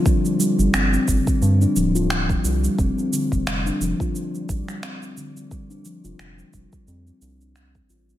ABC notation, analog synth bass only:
X:1
M:4/4
L:1/16
Q:"Swing 16ths" 1/4=88
K:F
V:1 name="Analog synth bass" clef=bass
z3 G,,, G,,, z G,,, z G,, z D,,,3 z C,, z | F,,, z2 F,,, F,,, z F,,, z3 A,,, z4 z | z3 F,,, F,,, z F,,, z F,, z C,,3 z A,,, z |]